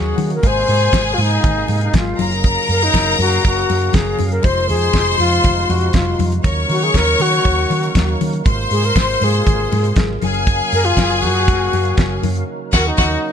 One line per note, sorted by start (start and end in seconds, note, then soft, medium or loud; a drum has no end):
0.00 0.12 D#2 loud
0.00 0.42 C#3 medium
0.00 0.42 F#3 medium
0.00 4.40 A#3 medium
0.00 0.42 D#4 medium
0.00 0.15 F#4 medium
0.00 0.42 F#4 medium
0.00 0.33 G#4 medium
0.00 0.15 F#5 loud
0.18 0.37 D#3 loud
0.18 open hi-hat medium
0.18 high conga medium
0.30 0.48 A#4 loud
0.30 closed hi-hat medium
0.43 0.62 G#1 loud
0.43 2.17 C3 medium
0.43 2.17 G#3 medium
0.43 4.40 G#4 medium
0.43 1.91 G#4 medium
0.43 4.40 F5 medium
0.43 1.91 G#5 loud
0.43 kick loud
0.43 closed hi-hat medium
0.43 muted conga soft
0.47 1.15 C5 loud
0.68 0.87 G#2 loud
0.68 open hi-hat medium
0.80 closed hi-hat soft
0.93 1.12 G#1 loud
0.93 kick loud
0.93 snare loud
0.93 closed hi-hat medium
0.93 high conga medium
1.14 1.23 F4 medium
1.14 muted conga soft
1.18 1.37 G#2 loud
1.18 1.82 D#4 loud
1.18 open hi-hat medium
1.31 closed hi-hat soft
1.43 1.63 G#1 loud
1.43 kick loud
1.43 closed hi-hat medium
1.43 low conga medium
1.68 1.87 G#2 loud
1.68 open hi-hat medium
1.68 muted conga medium
1.81 1.94 D#4 medium
1.81 closed hi-hat medium
1.94 2.13 G#1 loud
1.94 2.31 F4 medium
1.94 kick loud
1.94 snare loud
1.94 closed hi-hat loud
1.94 high conga medium
2.18 2.56 F#1 medium
2.18 4.42 C#3 medium
2.18 4.42 F#3 medium
2.18 4.15 A#4 loud
2.18 4.15 A#5 loud
2.18 open hi-hat medium
2.18 high conga loud
2.31 closed hi-hat medium
2.44 kick loud
2.44 closed hi-hat medium
2.44 muted conga medium
2.69 2.87 F#2 medium
2.69 2.85 A#4 loud
2.69 open hi-hat medium
2.82 3.20 D#4 medium
2.82 closed hi-hat soft
2.94 3.13 F#1 loud
2.94 kick medium
2.94 snare medium
2.94 closed hi-hat medium
2.94 high conga medium
3.19 3.37 F#2 loud
3.19 3.43 F#4 loud
3.19 open hi-hat medium
3.19 muted conga medium
3.32 closed hi-hat medium
3.45 3.63 F#1 medium
3.45 3.96 F#4 medium
3.45 kick loud
3.45 closed hi-hat medium
3.45 muted conga soft
3.70 3.88 F#2 medium
3.70 open hi-hat medium
3.70 muted conga medium
3.82 closed hi-hat soft
3.93 4.13 F#1 loud
3.93 4.31 G#4 loud
3.93 kick loud
3.93 snare loud
3.93 closed hi-hat loud
3.93 high conga medium
4.19 4.38 F#2 loud
4.19 open hi-hat medium
4.19 high conga medium
4.31 4.46 A#4 loud
4.31 closed hi-hat soft
4.42 4.71 F1 loud
4.42 6.42 C3 medium
4.42 6.42 F3 medium
4.42 6.42 G#3 medium
4.42 6.42 D#4 medium
4.42 6.42 F4 medium
4.42 4.69 C5 loud
4.42 6.16 C5 medium
4.42 6.16 C6 loud
4.42 kick loud
4.42 closed hi-hat medium
4.42 muted conga medium
4.69 4.88 F2 loud
4.69 5.16 G#4 loud
4.69 open hi-hat medium
4.82 closed hi-hat soft
4.93 5.13 F1 loud
4.93 kick medium
4.93 snare medium
4.93 closed hi-hat medium
4.93 high conga medium
5.18 5.38 F2 loud
5.18 5.72 F4 loud
5.18 open hi-hat medium
5.18 muted conga medium
5.32 closed hi-hat soft
5.44 5.63 F1 loud
5.44 kick loud
5.44 closed hi-hat medium
5.44 muted conga soft
5.44 low conga medium
5.69 5.88 F2 loud
5.69 5.97 F#4 medium
5.69 open hi-hat medium
5.69 muted conga medium
5.81 closed hi-hat soft
5.93 6.13 F1 medium
5.93 6.33 F4 medium
5.93 kick loud
5.93 snare loud
5.93 closed hi-hat medium
5.93 high conga medium
6.19 6.38 F2 medium
6.19 open hi-hat medium
6.19 high conga medium
6.32 closed hi-hat soft
6.43 6.63 D#2 loud
6.43 8.44 C#3 medium
6.43 8.43 F#3 medium
6.43 10.17 A#3 medium
6.43 8.43 D#4 medium
6.43 13.32 A#4 medium
6.43 8.17 C#5 medium
6.43 8.17 C#6 loud
6.43 kick loud
6.43 closed hi-hat medium
6.43 muted conga medium
6.69 6.88 D#3 loud
6.69 6.85 F#4 medium
6.69 open hi-hat medium
6.82 6.98 G#4 loud
6.82 closed hi-hat medium
6.94 7.14 D#2 loud
6.94 7.23 A#4 loud
6.94 kick loud
6.94 snare medium
6.94 closed hi-hat medium
6.94 high conga medium
7.20 7.39 D#3 loud
7.20 8.21 F#4 loud
7.20 open hi-hat medium
7.20 muted conga medium
7.32 closed hi-hat soft
7.45 7.64 D#2 loud
7.45 kick loud
7.45 closed hi-hat medium
7.70 7.89 D#3 loud
7.70 open hi-hat medium
7.70 muted conga medium
7.83 closed hi-hat soft
7.95 8.14 D#2 loud
7.95 kick loud
7.95 snare loud
7.95 closed hi-hat medium
7.95 high conga medium
8.21 8.40 D#3 medium
8.21 open hi-hat medium
8.21 high conga medium
8.33 closed hi-hat soft
8.45 8.65 G#1 loud
8.45 10.20 C3 medium
8.45 10.20 G#3 medium
8.45 10.20 F4 medium
8.45 9.93 C5 loud
8.45 9.94 C6 medium
8.45 kick loud
8.45 closed hi-hat medium
8.45 muted conga medium
8.71 8.90 G#2 medium
8.71 8.87 G#4 loud
8.71 open hi-hat medium
8.84 9.00 A#4 loud
8.84 closed hi-hat soft
8.96 9.15 G#1 loud
8.96 9.25 C5 loud
8.96 kick medium
8.96 snare loud
8.96 closed hi-hat medium
8.96 high conga medium
9.21 9.40 G#2 loud
9.21 10.23 G#4 loud
9.21 open hi-hat medium
9.21 muted conga medium
9.34 closed hi-hat soft
9.46 9.65 G#1 loud
9.46 kick loud
9.46 closed hi-hat medium
9.46 muted conga soft
9.46 low conga medium
9.72 9.91 G#2 loud
9.72 open hi-hat medium
9.72 muted conga medium
9.84 closed hi-hat medium
9.96 10.16 G#1 loud
9.96 kick loud
9.96 snare loud
9.96 closed hi-hat medium
9.96 high conga medium
10.20 10.60 F#1 loud
10.20 13.32 C#3 medium
10.20 13.32 F#3 medium
10.20 12.45 A#3 medium
10.20 12.19 G#4 loud
10.20 12.46 F5 medium
10.20 12.20 G#5 loud
10.20 open hi-hat medium
10.20 high conga medium
10.34 closed hi-hat medium
10.47 kick loud
10.47 closed hi-hat medium
10.47 muted conga soft
10.72 10.91 F#2 medium
10.72 10.86 A#4 loud
10.72 open hi-hat medium
10.85 11.23 F4 loud
10.85 closed hi-hat soft
10.97 11.25 F#1 loud
10.97 kick medium
10.97 snare loud
10.97 closed hi-hat medium
10.97 high conga medium
11.21 11.50 F#2 loud
11.21 12.22 F#4 loud
11.21 open hi-hat medium
11.21 muted conga soft
11.35 closed hi-hat medium
11.48 11.67 F#1 loud
11.48 kick loud
11.48 closed hi-hat medium
11.48 muted conga soft
11.73 11.92 F#2 loud
11.73 open hi-hat medium
11.73 muted conga medium
11.85 closed hi-hat medium
11.97 12.17 F#1 loud
11.97 kick loud
11.97 snare loud
11.97 closed hi-hat medium
11.97 high conga medium
12.23 12.42 F#2 medium
12.23 open hi-hat medium
12.23 high conga loud
12.35 closed hi-hat soft
12.47 13.32 A#3 medium
12.47 13.32 D#4 medium
12.72 12.90 D#2 loud
12.72 12.90 F#4 loud
12.72 12.89 A#4 loud
12.72 12.90 F#5 loud
12.72 kick loud
12.72 snare loud
12.72 crash medium
12.88 13.32 D#4 loud
12.96 13.15 D#2 loud
12.96 13.14 F#4 loud
12.96 13.15 F#5 loud
12.96 kick loud
12.96 snare medium